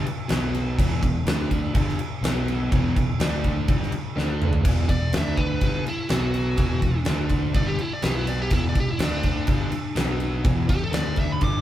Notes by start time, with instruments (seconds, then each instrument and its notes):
0.06 muted overdriven electric guitar stroke, muted picked electric bass stroke, crash
0.28 picked electric bass B1, overdriven electric guitar B2 F#3 B3, snare, crash
0.55 crash
0.77 picked electric bass E1, overdriven electric guitar E2 B2 E3, kick, crash
1.02 picked electric bass E1, overdriven electric guitar E2 B2, kick, crash
1.25 picked electric bass D2, overdriven electric guitar D3 A3 D4, snare, crash
1.51 kick, crash
1.73 picked electric bass G1, overdriven electric guitar G2 D3 G3, kick, crash
1.89 snare
1.99 muted overdriven electric guitar stroke, crash
2.21 picked electric bass B1, overdriven electric guitar B2 F#3 B3, snare, crash
2.48 crash
2.72 picked electric bass E1, overdriven electric guitar E2 B2 E3, kick, crash
2.96 picked electric bass E1, overdriven electric guitar E2 B2, kick, crash
3.19 picked electric bass D2, overdriven electric guitar D3 A3 D4, snare, crash
3.44 kick, crash
3.68 picked electric bass G1, overdriven electric guitar G2 D3 G3, kick, crash
3.83 snare
3.92 muted picked electric bass stroke, muted overdriven electric guitar stroke, crash
4.16 picked electric bass D2, overdriven electric guitar D3 A3 D4, snare
4.42 mid tom
4.53 floor tom
4.63 picked electric bass E1, overdriven electric guitar E2 B2 E3, kick, crash
4.89 picked electric bass E1, overdriven electric guitar E2 B2, lead electric guitar D5, kick, crash
5.13 picked electric bass D2, overdriven electric guitar D3 A3 D4, snare, crash
5.17 lead electric guitar E5
5.37 lead electric guitar B4, kick, crash
5.61 picked electric bass G1, overdriven electric guitar G2 D3 G3, kick, crash
5.86 lead electric guitar E4, muted picked electric bass stroke, muted overdriven electric guitar stroke, crash
6.09 picked electric bass B1, overdriven electric guitar B2 F#3 B3, lead electric guitar F#4, snare, crash
6.34 crash
6.57 picked electric bass E1, overdriven electric guitar E2 B2 E3, kick, crash
6.81 picked electric bass E1, overdriven electric guitar E2 B2, kick, crash
7.05 picked electric bass D2, overdriven electric guitar D3 A3 D4, snare, crash
7.29 kick, crash
7.53 picked electric bass G1, overdriven electric guitar G2 D3 G3, lead electric guitar D5, kick, crash
7.67 lead electric guitar G4
7.79 lead electric guitar E4, muted overdriven electric guitar stroke, muted picked electric bass stroke, crash
7.93 lead electric guitar D5
8.02 picked electric bass B1, overdriven electric guitar B2 F#3 B3, lead electric guitar G4, snare, crash
8.15 lead electric guitar E4
8.27 lead electric guitar D5, crash
8.42 lead electric guitar G4
8.50 picked electric bass E1, overdriven electric guitar E2 B2 E3, lead electric guitar E4, kick, crash
8.69 lead electric guitar D5
8.75 picked electric bass E1, overdriven electric guitar E2 B2, kick, crash
8.80 lead electric guitar G4
8.91 lead electric guitar E4
8.99 picked electric bass D2, overdriven electric guitar D3 A3 D4, lead electric guitar D4, snare, crash
9.23 kick, crash
9.47 picked electric bass G1, overdriven electric guitar G2 D3 G3, kick, crash
9.71 muted overdriven electric guitar stroke, muted picked electric bass stroke, crash
9.95 picked electric bass B1, overdriven electric guitar B2 F#3 B3, snare, crash
10.20 crash
10.44 picked electric bass E1, overdriven electric guitar E2 B2 E3, kick, crash
10.67 picked electric bass E1, overdriven electric guitar E2 B2, lead electric guitar G4, kick, crash
10.84 lead electric guitar A4
10.91 picked electric bass D2, overdriven electric guitar D3 A3 D4, lead electric guitar D5, snare, crash
11.16 lead electric guitar E5, kick, crash
11.32 lead electric guitar B5
11.41 picked electric bass G1, overdriven electric guitar G2 D3 G3, lead electric guitar D6, kick, crash